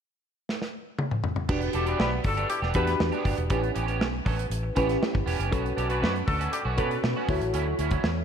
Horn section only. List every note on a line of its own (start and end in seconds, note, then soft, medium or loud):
1.75 1.85 G4 medium
1.75 1.85 B4 medium
1.75 1.85 D5 medium
1.87 1.97 E4 medium
1.87 1.97 G4 medium
1.87 1.97 B4 medium
1.99 2.10 E4 medium
1.99 2.10 G4 medium
1.99 2.10 B4 medium
2.25 2.45 D4 medium
2.25 2.45 F#4 medium
2.25 2.45 A4 loud
2.50 2.60 D4 medium
2.50 2.60 E4 medium
2.50 2.60 G4 medium
2.75 2.95 E4 medium
2.75 2.95 G4 medium
2.75 2.95 B4 loud
5.77 5.87 A4 medium
5.77 5.87 B4 medium
5.77 5.87 D5 medium
5.89 6.00 D4 medium
5.89 6.00 F#4 medium
5.89 6.00 B4 medium
6.02 6.13 D4 medium
6.02 6.12 F#4 medium
6.02 6.13 B4 medium
6.27 6.48 D4 medium
6.27 6.47 F#4 medium
6.27 6.47 A4 loud
6.52 6.62 G3 medium
6.52 6.62 D4 medium
6.52 6.63 G4 medium
6.77 6.98 D4 medium
6.77 6.98 F#4 medium
6.77 6.98 B4 loud